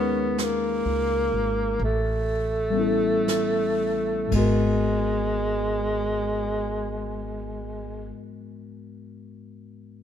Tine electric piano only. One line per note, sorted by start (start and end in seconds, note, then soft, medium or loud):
0.00 1.78 G#3 soft
0.00 1.79 C#4 soft
0.00 1.79 D#4 soft
0.00 1.79 G#4 soft
0.00 1.78 A#4 soft
2.70 4.30 G3 soft
2.70 4.31 B3 soft
2.75 4.32 C#4 soft
2.75 4.34 E4 soft
2.81 4.35 A4 medium
4.27 8.10 G#2 soft
4.27 8.12 G#3 soft
4.33 8.15 B3 soft
4.33 8.19 F#4 soft
4.39 8.22 A#4 medium